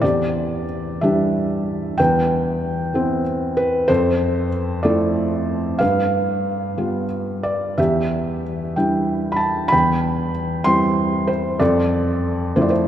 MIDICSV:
0, 0, Header, 1, 2, 480
1, 0, Start_track
1, 0, Key_signature, 0, "major"
1, 0, Tempo, 654308
1, 24, Time_signature, 6, 3, 24, 8
1, 1464, Tempo, 634249
1, 4344, Tempo, 657895
1, 6744, Tempo, 632911
1, 9616, End_track
2, 0, Start_track
2, 0, Title_t, "Felt piano"
2, 0, Program_c, 0, 0
2, 0, Control_c, 0, 64, 127
2, 11, Note_on_c, 0, 74, 77
2, 20, Note_on_c, 0, 40, 48
2, 28, Note_on_c, 0, 67, 52
2, 33, Control_c, 0, 64, 0
2, 146, Control_c, 0, 64, 127
2, 474, Note_off_c, 0, 74, 0
2, 724, Note_off_c, 0, 67, 0
2, 744, Note_on_c, 0, 76, 66
2, 750, Note_on_c, 0, 52, 40
2, 754, Note_on_c, 0, 55, 45
2, 756, Note_on_c, 0, 62, 53
2, 758, Note_on_c, 0, 67, 44
2, 1430, Note_off_c, 0, 76, 0
2, 1432, Note_off_c, 0, 40, 0
2, 1437, Note_off_c, 0, 67, 0
2, 1441, Note_off_c, 0, 52, 0
2, 1444, Note_off_c, 0, 55, 0
2, 1445, Note_off_c, 0, 62, 0
2, 1450, Note_on_c, 0, 79, 83
2, 1463, Note_on_c, 0, 71, 63
2, 1465, Note_on_c, 0, 40, 62
2, 1473, Control_c, 0, 64, 0
2, 1596, Control_c, 0, 64, 127
2, 2178, Note_on_c, 0, 52, 45
2, 2185, Note_on_c, 0, 59, 43
2, 2188, Note_on_c, 0, 60, 59
2, 2386, Note_off_c, 0, 79, 0
2, 2393, Note_off_c, 0, 71, 0
2, 2654, Note_on_c, 0, 71, 80
2, 2871, Note_off_c, 0, 40, 0
2, 2876, Note_off_c, 0, 52, 0
2, 2879, Note_off_c, 0, 59, 0
2, 2881, Note_off_c, 0, 60, 0
2, 2889, Note_on_c, 0, 72, 97
2, 2900, Note_on_c, 0, 41, 65
2, 2904, Note_off_c, 0, 71, 0
2, 2905, Note_on_c, 0, 69, 64
2, 2911, Control_c, 0, 64, 0
2, 3044, Control_c, 0, 64, 127
2, 3341, Note_off_c, 0, 72, 0
2, 3588, Note_off_c, 0, 69, 0
2, 3607, Note_on_c, 0, 74, 70
2, 3620, Note_on_c, 0, 53, 51
2, 3622, Note_on_c, 0, 57, 49
2, 3622, Note_on_c, 0, 69, 56
2, 3623, Note_on_c, 0, 64, 55
2, 4312, Note_off_c, 0, 41, 0
2, 4315, Note_off_c, 0, 69, 0
2, 4323, Note_off_c, 0, 53, 0
2, 4324, Note_off_c, 0, 57, 0
2, 4324, Note_off_c, 0, 64, 0
2, 4332, Note_on_c, 0, 77, 80
2, 4346, Note_on_c, 0, 71, 59
2, 4348, Note_on_c, 0, 43, 57
2, 4350, Control_c, 0, 64, 0
2, 4360, Note_off_c, 0, 74, 0
2, 4472, Control_c, 0, 64, 127
2, 5054, Note_on_c, 0, 55, 44
2, 5058, Note_on_c, 0, 65, 49
2, 5059, Note_on_c, 0, 59, 36
2, 5260, Note_off_c, 0, 77, 0
2, 5267, Note_off_c, 0, 71, 0
2, 5536, Note_on_c, 0, 74, 72
2, 5757, Note_off_c, 0, 43, 0
2, 5762, Note_off_c, 0, 55, 0
2, 5764, Note_off_c, 0, 59, 0
2, 5764, Note_off_c, 0, 65, 0
2, 5785, Note_on_c, 0, 76, 74
2, 5787, Note_on_c, 0, 40, 55
2, 5790, Note_off_c, 0, 74, 0
2, 5794, Control_c, 0, 64, 0
2, 5798, Note_on_c, 0, 67, 63
2, 5939, Control_c, 0, 64, 127
2, 6243, Note_off_c, 0, 76, 0
2, 6487, Note_off_c, 0, 67, 0
2, 6504, Note_on_c, 0, 79, 60
2, 6508, Note_on_c, 0, 55, 45
2, 6512, Note_on_c, 0, 62, 39
2, 6514, Note_on_c, 0, 64, 49
2, 6917, Note_on_c, 0, 83, 55
2, 6945, Note_off_c, 0, 79, 0
2, 6951, Note_on_c, 0, 81, 72
2, 6977, Note_off_c, 0, 83, 0
2, 7191, Note_off_c, 0, 81, 0
2, 7193, Note_on_c, 0, 83, 89
2, 7197, Note_off_c, 0, 40, 0
2, 7204, Note_off_c, 0, 55, 0
2, 7205, Note_off_c, 0, 62, 0
2, 7206, Note_off_c, 0, 64, 0
2, 7222, Note_on_c, 0, 79, 62
2, 7224, Note_on_c, 0, 40, 63
2, 7236, Control_c, 0, 64, 0
2, 7355, Control_c, 0, 64, 127
2, 7655, Note_off_c, 0, 83, 0
2, 7905, Note_off_c, 0, 79, 0
2, 7922, Note_on_c, 0, 84, 91
2, 7930, Note_on_c, 0, 55, 52
2, 7934, Note_on_c, 0, 60, 48
2, 7937, Note_on_c, 0, 64, 53
2, 8400, Note_on_c, 0, 72, 79
2, 8418, Note_off_c, 0, 84, 0
2, 8620, Note_off_c, 0, 40, 0
2, 8626, Note_off_c, 0, 55, 0
2, 8628, Note_off_c, 0, 60, 0
2, 8629, Note_off_c, 0, 72, 0
2, 8630, Note_off_c, 0, 64, 0
2, 8643, Note_on_c, 0, 74, 82
2, 8647, Note_on_c, 0, 41, 69
2, 8657, Note_on_c, 0, 69, 64
2, 8659, Control_c, 0, 64, 0
2, 8780, Control_c, 0, 64, 127
2, 9346, Note_off_c, 0, 74, 0
2, 9353, Note_off_c, 0, 69, 0
2, 9375, Note_on_c, 0, 72, 72
2, 9380, Note_on_c, 0, 53, 49
2, 9380, Note_on_c, 0, 57, 45
2, 9385, Note_on_c, 0, 64, 57
2, 9418, Note_on_c, 0, 74, 59
2, 9432, Note_off_c, 0, 72, 0
2, 9478, Note_off_c, 0, 74, 0
2, 9482, Note_on_c, 0, 72, 69
2, 9616, Note_off_c, 0, 41, 0
2, 9616, Note_off_c, 0, 53, 0
2, 9616, Note_off_c, 0, 57, 0
2, 9616, Note_off_c, 0, 64, 0
2, 9616, Note_off_c, 0, 72, 0
2, 9616, End_track
0, 0, End_of_file